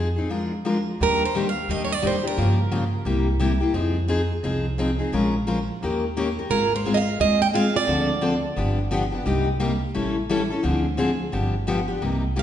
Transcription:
Already playing: upright bass F2
0.16 steel-string acoustic guitar C4 D#4 G#4
0.30 steel-string acoustic guitar F3 G#3 D4 F4 A#4
0.65 steel-string acoustic guitar F3 G#3 D4 F4 A#4
1.00 upright bass D#2, steel-string acoustic guitar D#3 G3 A#3 D4 G4 A#4
1.25 steel-string acoustic guitar C5
1.35 steel-string acoustic guitar D#3 G3 A#3 D4 G4
1.49 steel-string acoustic guitar F5
1.68 upright bass D#2, steel-string acoustic guitar D#3 G3 A#3 D4 G4 D#5
1.85 steel-string acoustic guitar C#5
1.92 steel-string acoustic guitar D5
2.02 upright bass F2, steel-string acoustic guitar D#3 G3 A#3 D4 G4
2.07 steel-string acoustic guitar C5
2.23 steel-string acoustic guitar A#3 D4 G4
2.27 steel-string acoustic guitar A#4
2.37 upright bass G2, steel-string acoustic guitar C#3 F3 A#3 F4 G4
2.71 steel-string acoustic guitar C#3 F3 A#3 F4 G4
3.05 upright bass C2, steel-string acoustic guitar C3 G3 A#3 E4 G4
3.40 steel-string acoustic guitar C3 G3 A#3 E4 G4
3.60 steel-string acoustic guitar A#3 E4 G4
3.74 upright bass F2, steel-string acoustic guitar F3 C4 D#4 G#4
4.08 steel-string acoustic guitar F3 C4 D#4 G#4
4.43 upright bass C2, steel-string acoustic guitar F3 C4 D#4 G#4
4.78 steel-string acoustic guitar F3 C4 D#4 G#4
4.99 steel-string acoustic guitar C4 D#4 G#4
5.12 upright bass A#1, steel-string acoustic guitar F3 G#3 C#4 F4 A#4
5.47 steel-string acoustic guitar F3 G#3 C#4 F4 A#4
5.82 upright bass D#2, steel-string acoustic guitar D#3 A#3 C#4 G4 A#4
6.17 steel-string acoustic guitar D#3 A#3 C#4 G4 A#4
6.39 steel-string acoustic guitar C#4 G4 A#4
6.50 upright bass G#1, steel-string acoustic guitar G#3 C4 F4 G#4 A#4
6.76 steel-string acoustic guitar C5
6.85 steel-string acoustic guitar G#3 C4 F4 G#4
6.94 steel-string acoustic guitar D#5 F5
7.19 upright bass D#2, steel-string acoustic guitar G#3 C4 F4 G#4 D#5
7.42 steel-string acoustic guitar G5
7.53 steel-string acoustic guitar G#3 C4 F4 G#4 F5
7.74 steel-string acoustic guitar C4 F4 G#4 D5
7.87 upright bass D2, steel-string acoustic guitar D3 F3 C4 D4 A4
8.21 steel-string acoustic guitar D3 F3 C4 D4 A4
8.56 upright bass G1, steel-string acoustic guitar D3 F3 B3 D4 G4
8.91 steel-string acoustic guitar D3 F3 B3 D4 G4
9.12 steel-string acoustic guitar B3 D4 G4
9.25 upright bass C2, steel-string acoustic guitar C3 G3 A#3 D#4 G4
9.60 steel-string acoustic guitar C3 G3 A#3 D#4 G4
9.94 upright bass A1, steel-string acoustic guitar E3 G3 C#4 E4 A4
10.29 steel-string acoustic guitar E3 G3 C#4 E4 A4
10.50 steel-string acoustic guitar C#4 E4 A4
10.63 upright bass D2, steel-string acoustic guitar D3 F3 C4 D4 G#4
10.97 steel-string acoustic guitar D3 F3 C4 D4 G#4
11.32 upright bass G1, steel-string acoustic guitar D3 F3 B3 D4 G4
11.67 steel-string acoustic guitar D3 F3 B3 D4 G4
11.88 steel-string acoustic guitar B3 D4 G4
12.02 upright bass C2, steel-string acoustic guitar C3 G3 A#3 D#4 G4
12.36 steel-string acoustic guitar C3 G3 A#3 D#4 G4 F5

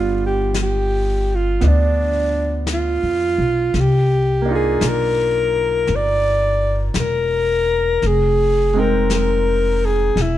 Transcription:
Already playing: upright bass G1, grand piano G3 B3 D4 F4, alto saxophone F4
0.26 alto saxophone G4
0.54 brush sweep, snare, hi-hat pedal
0.62 alto saxophone G4
1.35 alto saxophone F4
1.61 upright bass D2, grand piano B3 D4, brush sweep, snare
1.68 alto saxophone D4
2.67 brush sweep, snare, hi-hat pedal
2.73 alto saxophone F4
3.03 upright bass F2
3.38 upright bass B1
3.74 upright bass C2, alto saxophone F4, brush sweep, snare
3.80 alto saxophone G4
4.42 grand piano A#3 D4
4.49 grand piano D#4 F4
4.55 alto saxophone G#4
4.81 upright bass B1, brush sweep, snare, hi-hat pedal
4.88 alto saxophone A#4
5.87 upright bass G1, brush sweep, snare
5.95 alto saxophone D5
6.94 upright bass E1, brush sweep, snare, hi-hat pedal
7.00 alto saxophone A#4
8.02 upright bass F1, brush sweep, snare
8.07 alto saxophone G#4
8.74 grand piano G#3 C4 D#4
8.78 alto saxophone A#4, grand piano G5
9.10 brush sweep, snare, hi-hat pedal
9.14 alto saxophone A#4
9.86 alto saxophone G#4
10.16 upright bass E1, brush sweep, snare
10.21 alto saxophone E4

